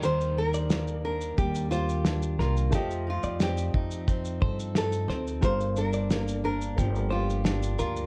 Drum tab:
SH |xx-xxx-xxxxxxx-x|xx-xxx-xxx-xxx-x|xxxxxx-xxx-xxxxx|
SD |----o-------o-o-|----o-------o-o-|----o-------o---|
BD |--------o-------|o-----o-o-o-----|o-------o-------|